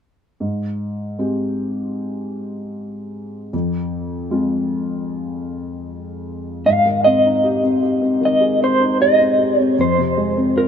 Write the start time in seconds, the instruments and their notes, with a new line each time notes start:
0.40 felt piano G#2
1.19 felt piano G#3 C4 G4
3.53 felt piano F2
4.31 felt piano G#3 C4 F4
6.66 felt piano G#2, clean electric guitar F5
6.85 felt piano D#3
7.04 felt piano C4, clean electric guitar D#5
7.25 felt piano D#4
7.44 felt piano G4
7.63 felt piano C4
7.83 felt piano G4
8.02 felt piano C4
8.21 felt piano D#3
8.25 clean electric guitar D#5
8.41 felt piano G#4
8.60 felt piano C4, clean electric guitar C5
8.80 felt piano D#4
9.00 felt piano G4, clean electric guitar D#5
9.20 felt piano C4
9.38 felt piano G4
9.59 felt piano C4, clean electric guitar C#5
9.78 felt piano F2, clean electric guitar C5
9.98 felt piano C3
10.17 felt piano G#3
10.37 felt piano C4
10.56 felt piano F4, clean electric guitar A#4